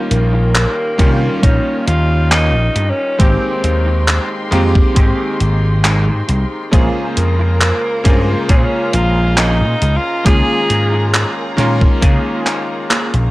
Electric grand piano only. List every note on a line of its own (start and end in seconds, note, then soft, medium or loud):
0.00 0.94 D#3 medium
0.00 0.94 G3 medium
0.00 0.94 A#3 medium
0.00 0.95 C#4 medium
0.00 0.95 F4 medium
0.98 3.14 D#3 medium
0.98 3.14 G3 medium
0.98 3.15 A#3 medium
0.98 3.15 C#4 medium
0.98 3.16 F4 loud
3.18 4.46 D#3 medium
3.18 4.47 G#3 medium
3.18 4.47 A#3 medium
3.18 4.48 C4 medium
3.18 4.48 G4 medium
4.51 6.67 D#3 medium
4.51 6.67 G#3 medium
4.51 6.68 A#3 medium
4.51 6.68 C4 medium
4.51 6.69 G4 loud
6.71 7.99 C#3 medium
6.71 8.00 G#3 medium
6.71 8.00 A#3 medium
6.71 8.01 F4 medium
6.71 8.01 C5 medium
8.04 10.20 C#3 medium
8.04 10.20 G#3 medium
8.04 10.21 A#3 medium
8.04 10.22 F4 loud
8.04 10.21 C5 medium
10.24 11.52 D#3 medium
10.24 11.53 G#3 medium
10.24 11.53 A#3 medium
10.24 11.54 C#4 medium
10.24 11.54 F4 medium
11.57 13.31 D#3 medium
11.57 13.31 G#3 medium
11.57 13.31 A#3 medium
11.57 13.31 C#4 medium
11.57 13.31 F4 loud